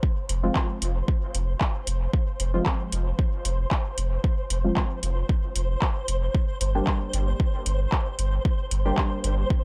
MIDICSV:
0, 0, Header, 1, 5, 480
1, 0, Start_track
1, 0, Tempo, 526316
1, 27, Time_signature, 4, 2, 24, 8
1, 8792, End_track
2, 0, Start_track
2, 0, Title_t, "Synth texture"
2, 0, Program_c, 0, 99
2, 0, Note_on_c, 0, 72, 89
2, 8792, Note_off_c, 0, 72, 0
2, 8792, End_track
3, 0, Start_track
3, 0, Title_t, "Synth stab"
3, 0, Program_c, 1, 62
3, 0, Note_on_c, 1, 53, 75
3, 0, Note_on_c, 1, 56, 71
3, 0, Note_on_c, 1, 60, 68
3, 0, Note_on_c, 1, 65, 82
3, 365, Note_off_c, 1, 53, 0
3, 365, Note_off_c, 1, 56, 0
3, 365, Note_off_c, 1, 60, 0
3, 365, Note_off_c, 1, 65, 0
3, 395, Note_on_c, 1, 53, 74
3, 395, Note_on_c, 1, 56, 69
3, 395, Note_on_c, 1, 60, 68
3, 395, Note_on_c, 1, 65, 80
3, 2284, Note_off_c, 1, 56, 0
3, 2284, Note_off_c, 1, 60, 0
3, 2284, Note_off_c, 1, 65, 0
3, 2285, Note_off_c, 1, 53, 0
3, 2315, Note_on_c, 1, 60, 68
3, 2316, Note_on_c, 1, 53, 73
3, 2316, Note_on_c, 1, 56, 70
3, 2316, Note_on_c, 1, 65, 82
3, 4205, Note_off_c, 1, 53, 0
3, 4205, Note_off_c, 1, 56, 0
3, 4205, Note_off_c, 1, 60, 0
3, 4205, Note_off_c, 1, 65, 0
3, 4235, Note_on_c, 1, 65, 82
3, 4236, Note_on_c, 1, 53, 75
3, 4236, Note_on_c, 1, 56, 71
3, 4236, Note_on_c, 1, 60, 68
3, 5774, Note_off_c, 1, 53, 0
3, 5774, Note_off_c, 1, 56, 0
3, 5774, Note_off_c, 1, 60, 0
3, 5774, Note_off_c, 1, 65, 0
3, 6155, Note_on_c, 1, 55, 77
3, 6155, Note_on_c, 1, 58, 68
3, 6155, Note_on_c, 1, 62, 68
3, 6155, Note_on_c, 1, 67, 82
3, 8044, Note_off_c, 1, 58, 0
3, 8045, Note_off_c, 1, 55, 0
3, 8045, Note_off_c, 1, 62, 0
3, 8045, Note_off_c, 1, 67, 0
3, 8075, Note_on_c, 1, 55, 74
3, 8075, Note_on_c, 1, 58, 69
3, 8075, Note_on_c, 1, 62, 68
3, 8075, Note_on_c, 1, 67, 81
3, 8792, Note_off_c, 1, 55, 0
3, 8792, Note_off_c, 1, 58, 0
3, 8792, Note_off_c, 1, 62, 0
3, 8792, Note_off_c, 1, 67, 0
3, 8792, End_track
4, 0, Start_track
4, 0, Title_t, "Sub bass"
4, 0, Program_c, 2, 38
4, 267, Note_on_c, 2, 29, 102
4, 452, Note_off_c, 2, 29, 0
4, 747, Note_on_c, 2, 29, 100
4, 932, Note_off_c, 2, 29, 0
4, 1226, Note_on_c, 2, 29, 102
4, 1411, Note_off_c, 2, 29, 0
4, 1707, Note_on_c, 2, 29, 87
4, 1891, Note_off_c, 2, 29, 0
4, 2187, Note_on_c, 2, 29, 101
4, 2372, Note_off_c, 2, 29, 0
4, 2667, Note_on_c, 2, 29, 103
4, 2852, Note_off_c, 2, 29, 0
4, 3147, Note_on_c, 2, 29, 103
4, 3331, Note_off_c, 2, 29, 0
4, 3627, Note_on_c, 2, 29, 87
4, 3812, Note_off_c, 2, 29, 0
4, 4107, Note_on_c, 2, 29, 101
4, 4291, Note_off_c, 2, 29, 0
4, 4587, Note_on_c, 2, 29, 97
4, 4771, Note_off_c, 2, 29, 0
4, 5067, Note_on_c, 2, 29, 104
4, 5252, Note_off_c, 2, 29, 0
4, 5547, Note_on_c, 2, 29, 87
4, 5732, Note_off_c, 2, 29, 0
4, 6027, Note_on_c, 2, 31, 97
4, 6212, Note_off_c, 2, 31, 0
4, 6507, Note_on_c, 2, 31, 102
4, 6692, Note_off_c, 2, 31, 0
4, 6987, Note_on_c, 2, 31, 101
4, 7172, Note_off_c, 2, 31, 0
4, 7468, Note_on_c, 2, 31, 89
4, 7652, Note_off_c, 2, 31, 0
4, 7947, Note_on_c, 2, 31, 100
4, 8131, Note_off_c, 2, 31, 0
4, 8428, Note_on_c, 2, 31, 100
4, 8612, Note_off_c, 2, 31, 0
4, 8792, End_track
5, 0, Start_track
5, 0, Title_t, "Drums"
5, 27, Note_on_c, 9, 36, 123
5, 118, Note_off_c, 9, 36, 0
5, 267, Note_on_c, 9, 42, 89
5, 358, Note_off_c, 9, 42, 0
5, 507, Note_on_c, 9, 36, 107
5, 507, Note_on_c, 9, 39, 82
5, 598, Note_off_c, 9, 36, 0
5, 598, Note_off_c, 9, 39, 0
5, 747, Note_on_c, 9, 42, 88
5, 838, Note_off_c, 9, 42, 0
5, 987, Note_on_c, 9, 36, 119
5, 1078, Note_off_c, 9, 36, 0
5, 1227, Note_on_c, 9, 42, 84
5, 1318, Note_off_c, 9, 42, 0
5, 1467, Note_on_c, 9, 36, 113
5, 1467, Note_on_c, 9, 39, 83
5, 1558, Note_off_c, 9, 36, 0
5, 1558, Note_off_c, 9, 39, 0
5, 1707, Note_on_c, 9, 42, 85
5, 1798, Note_off_c, 9, 42, 0
5, 1947, Note_on_c, 9, 36, 122
5, 2038, Note_off_c, 9, 36, 0
5, 2186, Note_on_c, 9, 42, 89
5, 2278, Note_off_c, 9, 42, 0
5, 2427, Note_on_c, 9, 36, 108
5, 2427, Note_on_c, 9, 39, 83
5, 2518, Note_off_c, 9, 36, 0
5, 2518, Note_off_c, 9, 39, 0
5, 2667, Note_on_c, 9, 42, 93
5, 2758, Note_off_c, 9, 42, 0
5, 2907, Note_on_c, 9, 36, 120
5, 2998, Note_off_c, 9, 36, 0
5, 3147, Note_on_c, 9, 42, 88
5, 3238, Note_off_c, 9, 42, 0
5, 3386, Note_on_c, 9, 39, 78
5, 3387, Note_on_c, 9, 36, 111
5, 3478, Note_off_c, 9, 36, 0
5, 3478, Note_off_c, 9, 39, 0
5, 3627, Note_on_c, 9, 42, 87
5, 3718, Note_off_c, 9, 42, 0
5, 3867, Note_on_c, 9, 36, 120
5, 3958, Note_off_c, 9, 36, 0
5, 4107, Note_on_c, 9, 42, 90
5, 4198, Note_off_c, 9, 42, 0
5, 4347, Note_on_c, 9, 36, 108
5, 4347, Note_on_c, 9, 39, 78
5, 4438, Note_off_c, 9, 36, 0
5, 4438, Note_off_c, 9, 39, 0
5, 4586, Note_on_c, 9, 42, 89
5, 4678, Note_off_c, 9, 42, 0
5, 4827, Note_on_c, 9, 36, 119
5, 4919, Note_off_c, 9, 36, 0
5, 5067, Note_on_c, 9, 42, 87
5, 5158, Note_off_c, 9, 42, 0
5, 5307, Note_on_c, 9, 36, 112
5, 5307, Note_on_c, 9, 39, 78
5, 5398, Note_off_c, 9, 36, 0
5, 5398, Note_off_c, 9, 39, 0
5, 5547, Note_on_c, 9, 42, 87
5, 5638, Note_off_c, 9, 42, 0
5, 5787, Note_on_c, 9, 36, 120
5, 5878, Note_off_c, 9, 36, 0
5, 6027, Note_on_c, 9, 42, 86
5, 6118, Note_off_c, 9, 42, 0
5, 6267, Note_on_c, 9, 36, 108
5, 6267, Note_on_c, 9, 39, 78
5, 6358, Note_off_c, 9, 36, 0
5, 6358, Note_off_c, 9, 39, 0
5, 6507, Note_on_c, 9, 42, 86
5, 6598, Note_off_c, 9, 42, 0
5, 6747, Note_on_c, 9, 36, 119
5, 6838, Note_off_c, 9, 36, 0
5, 6986, Note_on_c, 9, 42, 83
5, 7078, Note_off_c, 9, 42, 0
5, 7226, Note_on_c, 9, 39, 78
5, 7227, Note_on_c, 9, 36, 104
5, 7318, Note_off_c, 9, 36, 0
5, 7318, Note_off_c, 9, 39, 0
5, 7466, Note_on_c, 9, 42, 82
5, 7558, Note_off_c, 9, 42, 0
5, 7707, Note_on_c, 9, 36, 117
5, 7798, Note_off_c, 9, 36, 0
5, 7947, Note_on_c, 9, 42, 79
5, 8038, Note_off_c, 9, 42, 0
5, 8187, Note_on_c, 9, 36, 102
5, 8187, Note_on_c, 9, 39, 77
5, 8278, Note_off_c, 9, 36, 0
5, 8278, Note_off_c, 9, 39, 0
5, 8427, Note_on_c, 9, 42, 81
5, 8518, Note_off_c, 9, 42, 0
5, 8667, Note_on_c, 9, 36, 115
5, 8758, Note_off_c, 9, 36, 0
5, 8792, End_track
0, 0, End_of_file